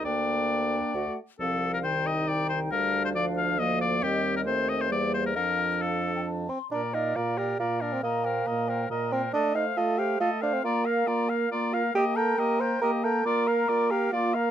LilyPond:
<<
  \new Staff \with { instrumentName = "Flute" } { \time 3/4 \key g \minor \tempo 4 = 137 g''2 fis''8 r8 | \key bes \major f''4 g''4 g''4 | f''4 f''4 f''4 | ees''4 c''2 |
f''4 f''8. g''16 a''8 c'''8 | bes''8 f''8 bes''8 f''8 bes''8 f''8 | bes''8 g''8 bes''8 g''8 bes''8 g''8 | a''8 f''8 a''8 f''8 a''8 f''8 |
bes''8 f''8 bes''8 f''8 bes''8 f''8 | g''8 bes''8 g''8 bes''8 g''8 bes''8 | d'''8 bes''8 d'''8 bes''8 d'''8 bes''8 | }
  \new Staff \with { instrumentName = "Oboe" } { \time 3/4 \key g \minor d''2~ d''8 r8 | \key bes \major a'8. bes'16 c''8 ees''8 d''8 c''8 | bes'8. c''16 d''8 f''8 ees''8 d''8 | g'8. bes'16 c''8 ees''16 c''16 d''8 c''16 bes'16 |
bes'4 a'4 r4 | d''8 bes'8 d''8 bes'8 d''8 bes'8 | ees''8 bes'8 ees''8 bes'8 ees''8 bes'8 | ees''8 f''8 ees''8 f''8 ees''8 f''8 |
d''8 f''8 d''8 f''8 d''8 f''8 | ees''8 g''8 ees''8 g''8 ees''8 g''8 | d''8 f''8 d''8 f''8 d''8 f''8 | }
  \new Staff \with { instrumentName = "Clarinet" } { \time 3/4 \key g \minor d'2 fis'8 r8 | \key bes \major c'4 ees'2 | d'4 d'4 bes4 | c'4 c'4 bes4 |
d'2~ d'8 r8 | bes'8 d''8 bes'8 d''8 bes'8 d''8 | bes'8 c''8 bes'8 c''8 bes'8 c''8 | a'8 c''8 a'8 c''8 a'8 c''8 |
f'8 bes'8 f'8 bes'8 f'8 bes'8 | g'8 bes'8 g'8 bes'8 g'8 bes'8 | f'8 bes'8 f'8 bes'8 f'8 bes'8 | }
  \new Staff \with { instrumentName = "Bassoon" } { \time 3/4 \key g \minor d,2 d,8 r8 | \key bes \major c,2. | d,2. | ees,2 e,4 |
f,2~ f,8 c'8 | d'8 ees'8 f'8 g'8 f'8 d'16 c'16 | bes2 r8 c'8 | d'8 ees'8 f'8 g'8 f'8 d'16 c'16 |
bes2 r8 f'8 | g'8 a'8 bes'8 c''8 bes'8 a'8 | bes'4. g'8 f'8 bes8 | }
  \new Staff \with { instrumentName = "French horn" } { \time 3/4 \key g \minor bes2 a8 r8 | \key bes \major f4 ees2 | g4 f4 f4 | g4 a4 g4 |
f2~ f8 r8 | bes,4 bes,4 bes,4 | bes,4 bes,4 bes,4 | a4 a4 a4 |
bes4 bes4 bes4 | bes4 bes4 bes4 | bes4 bes4 bes4 | }
>>